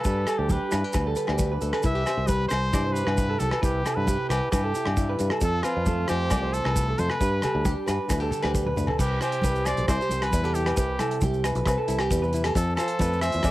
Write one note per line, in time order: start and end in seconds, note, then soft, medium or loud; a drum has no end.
0.00 0.40 A4 medium
0.04 0.24 G2 medium
0.04 2.26 G3 medium
0.04 0.27 G4 medium
0.04 0.26 B4 medium
0.04 kick medium
0.04 maracas medium
0.27 0.50 G4 soft
0.27 0.49 A4 medium
0.27 cross-stick medium
0.27 closed hi-hat soft
0.27 muted conga soft
0.27 low agogo medium
0.27 maracas medium
0.38 0.58 D2 medium
0.38 0.53 G4 medium
0.49 1.37 D4 medium
0.49 0.71 G4 medium
0.49 0.95 B4 medium
0.49 kick medium
0.49 high conga medium
0.49 maracas medium
0.71 0.82 G2 medium
0.71 0.84 E4 medium
0.71 0.93 B4 medium
0.71 cross-stick medium
0.71 closed hi-hat medium
0.71 low agogo medium
0.71 maracas medium
0.84 0.94 G4 soft
0.93 1.14 D2 medium
0.93 1.84 D3 medium
0.93 1.83 G4 medium
0.93 1.05 B4 medium
0.93 kick medium
0.93 cross-stick medium
0.93 muted conga soft
0.93 high conga medium
0.93 low agogo medium
0.93 maracas medium
1.07 1.28 A4 medium
1.16 1.38 B4 medium
1.16 closed hi-hat medium
1.16 maracas medium
1.27 1.57 D2 medium
1.27 1.50 G4 medium
1.27 cross-stick medium
1.27 low agogo medium
1.38 1.81 D4 medium
1.38 1.61 B4 medium
1.38 kick medium
1.38 high conga medium
1.38 maracas medium
1.52 1.72 B4 medium
1.61 1.71 D2 medium
1.61 1.73 A4 medium
1.61 closed hi-hat soft
1.61 muted conga soft
1.61 maracas medium
1.73 1.84 A4 medium
1.73 1.84 B4 medium
1.73 cross-stick medium
1.73 low agogo medium
1.83 2.03 C2 medium
1.83 2.71 C3 medium
1.83 1.95 E4 medium
1.83 2.05 B4 medium
1.83 2.29 E5 medium
1.83 kick medium
1.83 muted conga soft
1.83 maracas medium
1.95 2.05 G4 soft
2.06 2.26 G4 medium
2.06 2.28 C5 medium
2.06 cross-stick medium
2.06 closed hi-hat soft
2.06 muted conga soft
2.06 low agogo medium
2.06 maracas medium
2.17 2.46 C2 medium
2.26 3.17 G3 medium
2.26 2.50 G4 medium
2.26 2.48 B4 medium
2.26 2.50 B4 medium
2.26 kick medium
2.26 high conga medium
2.26 maracas medium
2.48 2.70 C2 medium
2.48 2.92 G4 medium
2.48 2.94 C5 loud
2.48 cross-stick medium
2.48 closed hi-hat soft
2.48 low agogo medium
2.48 maracas medium
2.72 3.02 G2 medium
2.72 3.59 C3 medium
2.72 3.62 E4 medium
2.72 2.84 D5 medium
2.72 kick medium
2.72 cross-stick medium
2.72 muted conga soft
2.72 high conga medium
2.72 low agogo medium
2.72 maracas medium
2.85 3.06 C5 medium
2.93 3.16 G4 medium
2.93 3.41 B4 medium
2.93 closed hi-hat soft
2.93 maracas medium
3.06 3.36 G2 medium
3.06 3.28 B4 medium
3.06 cross-stick medium
3.06 low agogo medium
3.17 3.38 G4 medium
3.17 kick medium
3.17 maracas medium
3.29 3.51 A4 medium
3.39 3.51 C2 medium
3.39 3.60 G4 medium
3.39 3.62 A4 medium
3.39 closed hi-hat soft
3.39 muted conga soft
3.39 high conga medium
3.39 maracas medium
3.51 3.61 B4 medium
3.51 cross-stick medium
3.51 low agogo medium
3.62 3.82 C2 medium
3.62 4.50 C3 medium
3.62 3.85 E4 medium
3.62 3.97 G4 medium
3.62 3.84 B4 medium
3.62 kick loud
3.62 muted conga soft
3.62 maracas medium
3.85 4.31 E4 medium
3.85 4.07 A4 medium
3.85 cross-stick medium
3.85 closed hi-hat soft
3.85 muted conga soft
3.85 low agogo medium
3.85 maracas medium
3.95 4.16 G2 medium
3.95 4.29 B4 medium
4.07 4.28 G4 medium
4.07 5.39 G4 medium
4.07 kick medium
4.07 high conga medium
4.07 maracas medium
4.29 4.39 C2 medium
4.29 4.52 E4 medium
4.29 4.50 G4 medium
4.29 4.51 B4 medium
4.29 cross-stick medium
4.29 closed hi-hat medium
4.29 low agogo medium
4.29 maracas medium
4.51 4.72 G2 medium
4.51 5.39 C3 medium
4.51 4.74 E4 medium
4.51 5.15 G4 medium
4.51 4.63 B4 medium
4.51 kick medium
4.51 cross-stick medium
4.51 muted conga soft
4.51 high conga medium
4.51 low agogo medium
4.51 maracas medium
4.64 4.85 A4 medium
4.75 4.96 E4 medium
4.75 closed hi-hat soft
4.75 maracas medium
4.85 5.15 G2 medium
4.85 muted clean electric guitar stroke medium
4.85 cross-stick medium
4.85 low agogo medium
4.97 5.41 G3 medium
4.97 5.39 E4 medium
4.97 kick medium
4.97 high conga medium
4.97 maracas medium
5.09 5.30 B4 medium
5.19 5.29 G2 medium
5.19 5.39 B4 medium
5.19 closed hi-hat soft
5.19 muted conga soft
5.19 maracas medium
5.30 5.41 A4 medium
5.30 cross-stick medium
5.30 low agogo medium
5.41 5.61 F2 medium
5.41 7.18 F3 medium
5.41 6.08 F4 medium
5.41 5.63 A4 medium
5.41 5.65 A4 medium
5.41 kick medium
5.41 muted conga soft
5.41 maracas medium
5.63 5.87 C4 medium
5.63 6.09 F4 medium
5.63 5.85 B4 medium
5.63 cross-stick medium
5.63 closed hi-hat soft
5.63 low agogo medium
5.63 maracas medium
5.77 6.05 F2 medium
5.86 6.75 A3 medium
5.86 6.31 C4 medium
5.86 6.08 A4 medium
5.86 kick medium
5.86 high conga medium
5.86 maracas medium
6.08 6.29 F2 medium
6.08 6.54 F4 medium
6.08 6.55 G4 loud
6.08 6.30 C5 medium
6.08 cross-stick medium
6.08 closed hi-hat soft
6.08 low agogo medium
6.08 maracas medium
6.30 6.60 C2 medium
6.30 7.18 C3 medium
6.30 7.21 C4 medium
6.30 6.42 D5 medium
6.30 kick medium
6.30 cross-stick medium
6.30 muted conga soft
6.30 high conga medium
6.30 low agogo medium
6.30 maracas medium
6.43 6.64 C5 medium
6.53 7.01 A4 medium
6.53 closed hi-hat soft
6.53 maracas medium
6.64 6.94 C2 medium
6.64 6.86 B4 medium
6.64 cross-stick medium
6.64 low agogo medium
6.76 7.18 A3 medium
6.76 7.19 F4 medium
6.76 kick medium
6.76 maracas medium
6.89 7.09 A4 medium
6.98 7.08 F2 medium
6.98 7.21 A4 medium
6.98 7.13 C5 medium
6.98 closed hi-hat soft
6.98 muted conga soft
6.98 high conga medium
6.98 maracas medium
7.10 7.77 B4 medium
7.10 muted clean electric guitar stroke medium
7.10 cross-stick medium
7.10 low agogo medium
7.20 7.40 G2 medium
7.20 9.44 G3 medium
7.20 7.43 G4 medium
7.20 7.42 B4 medium
7.20 kick medium
7.20 maracas medium
7.42 7.65 G4 medium
7.42 7.65 A4 medium
7.42 cross-stick medium
7.42 closed hi-hat soft
7.42 muted conga soft
7.42 low conga medium
7.42 low agogo medium
7.42 maracas medium
7.55 7.74 D2 medium
7.65 8.53 D4 medium
7.65 7.86 G4 medium
7.65 8.08 G4 medium
7.65 kick medium
7.65 high conga medium
7.65 maracas medium
7.86 7.98 G2 medium
7.86 8.30 B4 medium
7.86 8.10 B4 medium
7.86 cross-stick medium
7.86 closed hi-hat soft
7.86 low agogo medium
7.86 maracas medium
8.08 8.29 D2 medium
8.08 8.98 D3 medium
8.08 8.20 E4 medium
8.08 8.21 B4 medium
8.08 kick medium
8.08 cross-stick medium
8.08 muted conga soft
8.08 high conga medium
8.08 low agogo medium
8.08 maracas medium
8.20 8.99 G4 soft
8.20 8.43 A4 medium
8.31 8.42 A4 medium
8.31 closed hi-hat soft
8.31 low conga medium
8.31 maracas medium
8.42 8.72 D2 medium
8.42 8.65 G4 medium
8.42 8.54 B4 medium
8.42 cross-stick medium
8.42 high conga soft
8.42 low agogo medium
8.54 8.96 D4 soft
8.54 8.76 B4 soft
8.54 kick medium
8.54 high tom soft
8.54 high conga medium
8.54 maracas medium
8.65 8.87 B4 medium
8.65 mid tom soft
8.65 high conga medium
8.76 8.87 D2 medium
8.76 8.96 B4 medium
8.76 mid tom medium
8.76 low conga medium
8.76 maracas medium
8.87 8.99 A4 medium
8.87 floor tom medium
8.87 low conga medium
8.87 low agogo medium
8.98 9.18 C2 medium
8.98 9.89 C3 medium
8.98 9.21 G4 medium
8.98 9.21 B4 medium
8.98 kick medium
8.98 crash medium
8.98 maracas medium
9.20 9.90 E4 soft
9.20 9.68 G4 medium
9.20 9.43 C5 medium
9.20 cross-stick medium
9.20 closed hi-hat soft
9.20 muted conga soft
9.20 low agogo medium
9.20 maracas medium
9.32 closed hi-hat medium
9.42 9.73 C2 medium
9.42 10.33 G3 medium
9.42 9.65 B4 medium
9.42 kick medium
9.42 closed hi-hat soft
9.42 high conga medium
9.42 maracas medium
9.56 maracas soft
9.65 9.88 C5 medium
9.65 9.88 D5 medium
9.65 cross-stick medium
9.65 closed hi-hat soft
9.65 low agogo medium
9.65 maracas medium
9.77 9.87 B1 medium
9.77 closed hi-hat soft
9.77 maracas soft
9.86 9.98 C2 loud
9.86 10.76 C3 medium
9.86 10.02 E4 medium
9.86 10.25 C5 loud
9.86 9.99 D5 medium
9.86 kick medium
9.86 cross-stick medium
9.86 closed hi-hat soft
9.86 muted conga soft
9.86 low agogo medium
9.86 maracas medium
10.00 10.11 G4 medium
10.00 10.21 C5 medium
10.00 maracas soft
10.09 10.30 C2 medium
10.09 10.34 G4 medium
10.09 closed hi-hat soft
10.09 high conga medium
10.09 maracas medium
10.21 10.43 B4 medium
10.21 10.57 B4 medium
10.21 cross-stick medium
10.21 closed hi-hat soft
10.21 low agogo medium
10.31 10.71 E2 medium
10.31 11.21 G3 medium
10.31 10.45 E4 medium
10.31 kick medium
10.31 closed hi-hat medium
10.31 high conga medium
10.31 maracas medium
10.43 10.78 G4 medium
10.43 10.65 A4 medium
10.43 maracas soft
10.55 11.00 E4 medium
10.55 10.78 G4 medium
10.55 closed hi-hat soft
10.55 maracas medium
10.66 10.75 B4 medium
10.66 cross-stick medium
10.66 closed hi-hat soft
10.66 low agogo medium
10.76 10.97 C2 medium
10.76 11.66 C3 medium
10.76 11.20 G4 medium
10.76 10.98 B4 medium
10.76 kick medium
10.76 closed hi-hat soft
10.76 muted conga soft
10.76 maracas loud
10.99 11.87 E4 medium
10.99 11.21 A4 medium
10.99 cross-stick medium
10.99 closed hi-hat soft
10.99 muted conga soft
10.99 high conga medium
10.99 low agogo medium
10.99 maracas medium
11.11 closed hi-hat soft
11.21 11.51 C2 medium
11.21 11.44 G4 medium
11.21 muted nylon-string guitar stroke medium
11.21 kick medium
11.21 closed hi-hat soft
11.21 high conga medium
11.21 low conga medium
11.21 maracas medium
11.34 maracas soft
11.44 11.66 B4 medium
11.44 cross-stick medium
11.44 closed hi-hat medium
11.44 low agogo medium
11.44 maracas medium
11.55 11.65 B1 medium
11.55 closed hi-hat soft
11.55 maracas soft
11.66 11.76 C2 loud
11.66 12.54 C3 medium
11.66 11.78 B4 medium
11.66 12.10 B4 medium
11.66 kick medium
11.66 cross-stick medium
11.66 closed hi-hat soft
11.66 muted conga soft
11.66 low agogo medium
11.66 maracas medium
11.78 11.99 A4 medium
11.88 12.08 C2 medium
11.88 12.01 E4 medium
11.88 closed hi-hat medium
11.88 maracas medium
11.98 12.21 G4 medium
11.98 12.34 G4 soft
11.98 cross-stick medium
11.98 closed hi-hat medium
11.98 low agogo medium
12.10 12.49 E2 medium
12.10 12.55 G3 medium
12.10 12.54 B4 medium
12.10 kick medium
12.10 closed hi-hat soft
12.10 high conga medium
12.10 maracas medium
12.22 12.44 B4 medium
12.22 maracas soft
12.33 12.44 E4 medium
12.33 closed hi-hat medium
12.33 maracas medium
12.44 12.56 G4 medium
12.44 12.54 A4 medium
12.44 cross-stick medium
12.44 closed hi-hat medium
12.44 low agogo medium
12.55 12.75 F2 medium
12.55 13.51 F3 medium
12.55 12.75 A4 medium
12.55 muted clean electric guitar stroke medium
12.55 kick medium
12.55 closed hi-hat medium
12.55 muted conga soft
12.55 maracas loud
12.76 13.51 F4 medium
12.76 13.19 A4 medium
12.76 13.00 C5 medium
12.76 cross-stick medium
12.76 closed hi-hat medium
12.76 muted conga soft
12.76 low agogo medium
12.76 maracas medium
12.88 closed hi-hat medium
12.99 13.29 F2 loud
12.99 13.51 A3 medium
12.99 13.22 B4 medium
12.99 kick medium
12.99 closed hi-hat soft
12.99 high conga medium
12.99 maracas medium
13.13 maracas soft
13.21 13.44 C5 medium
13.21 13.51 E5 loud
13.21 cross-stick medium
13.21 closed hi-hat medium
13.21 low agogo medium
13.21 maracas medium
13.32 13.44 E2 medium
13.32 closed hi-hat medium
13.32 maracas soft
13.43 13.51 F2 medium
13.43 13.51 C3 medium
13.43 13.51 D5 medium
13.43 kick medium
13.43 cross-stick medium
13.43 closed hi-hat soft
13.43 low agogo medium
13.43 maracas medium